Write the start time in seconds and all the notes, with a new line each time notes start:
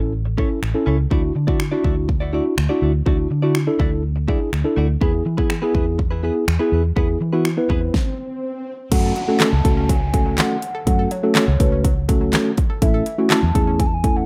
Already playing: A1 C#4 E4 A4
0.25 muted clean electric guitar stroke
0.37 C#4 E4 A4 C#5, kick
0.62 A1, finger snap
0.74 C#4 E4 A4, muted clean electric guitar stroke
0.86 C#2 C#4 E4 A4 C#5
0.98 muted clean electric guitar stroke
1.10 D2 A3 D4 E4 F#4 D5, kick
1.23 muted clean electric guitar stroke
1.35 D3, muted clean electric guitar stroke
1.47 A3 D4 E4 F#4 D5, kick
1.60 finger snap
1.72 A3 D4 E4 F#4 D5
1.84 D2 A3 E4 F#4 D5, kick
1.96 muted clean electric guitar stroke
2.08 muted clean electric guitar stroke, kick
2.20 A3 E4 F#4 D5
2.33 A3 D4 E4 F#4 D5
2.45 muted clean electric guitar stroke
2.57 D2, finger snap, muted clean electric guitar stroke
2.69 A3 D4 E4 F#4 D5
2.81 D2 A3 E4 F#4 D5
3.06 D2 A3 D4 E4 F#4 D5, kick
3.18 muted clean electric guitar stroke
3.30 D3, muted clean electric guitar stroke
3.42 A3 D4 E4 F#4 D5
3.55 finger snap
3.67 D4 E4 A4, muted clean electric guitar stroke
3.79 D2 A3 E4 F#4 D5, kick
3.91 muted clean electric guitar stroke
4.16 muted clean electric guitar stroke
4.28 A3 D4 E4 F#4 G#4 D5, kick
4.40 muted clean electric guitar stroke
4.53 D2, finger snap
4.64 D4 E4 A4, muted clean electric guitar stroke
4.76 D2 A3 E4 F#4 D5
4.89 muted clean electric guitar stroke
5.01 E2 B3 E4 G#4 B4, kick
5.13 muted clean electric guitar stroke
5.25 E3, muted clean electric guitar stroke
5.37 B3 E4 G#4 B4, kick
5.50 finger snap, muted clean electric guitar stroke
5.62 B3 E4 G#4 B4
5.74 E2 B3 E4 G#4 B4, kick
5.86 muted clean electric guitar stroke
5.98 muted clean electric guitar stroke, kick
6.11 B3 E4 G#4 B4
6.23 B3 E4 G#4 B4
6.35 muted clean electric guitar stroke
6.47 E2, finger snap, muted clean electric guitar stroke
6.59 B3 E4 G#4 B4
6.72 E2 B3 E4 G#4 B4
6.96 E2 B3 E4 G#4 B4, kick, swell
7.08 muted clean electric guitar stroke
7.21 E3, muted clean electric guitar stroke
7.33 B3 E4 F#4 G#4 B4
7.45 finger snap, muted clean electric guitar stroke
7.57 B3 E4 B4, muted clean electric guitar stroke
7.69 E2 B3 E4 G#4 B4, kick
7.81 muted clean electric guitar stroke
7.94 kick, snare
8.91 F#2 F#3 A3 C#4 F#4 A4 F#5, kick, closed hi-hat, crash, downlifter
9.04 A4
9.16 F#3, closed hi-hat
9.28 F#3 A3 C#4 F#4 A4
9.40 A4 A5, snare, clap, closed hi-hat
9.53 C#2
9.65 C#2 A3 C#4 F#4 A4, kick, closed hi-hat
9.77 C#4
9.89 F#3 G#5, kick, closed hi-hat
10.13 F#3 A3 C#4 F#4 A4, kick, closed hi-hat
10.26 F#3
10.38 F#5, snare, clap, closed hi-hat
10.62 closed hi-hat
10.75 A4
10.87 F#2 F#3 A3 C#4 F#4 A4 F#5, kick, closed hi-hat
10.99 A4
11.11 F#3 C#5, closed hi-hat
11.23 F#3 A3 C#4 F#4 A4
11.35 A4, snare, clap, closed hi-hat
11.48 C#2
11.60 C#2 A3 C#4 F#4 A4 B4, kick, closed hi-hat
11.72 C#4
11.84 F#3, kick, closed hi-hat
12.08 F#3 A3 C#4 F#4 A4, kick, closed hi-hat
12.21 F#3
12.33 snare, clap, closed hi-hat
12.57 kick, closed hi-hat
12.70 A4
12.82 A1 E3 A3 C#4 E4 A4 E5, kick, closed hi-hat
12.94 A4
13.06 E3, closed hi-hat
13.18 E3 A3 C#4 E4 F#4
13.30 A4 A5, snare, clap, closed hi-hat
13.43 E2
13.55 E2 A3 C#4 E4 G#4 A4, kick, closed hi-hat
13.67 C#4
13.80 E3 G#5, kick, closed hi-hat
13.87 A5
13.94 G#5
14.04 E3 A3 C#4 E4 A4, kick, closed hi-hat
14.16 E3 F#5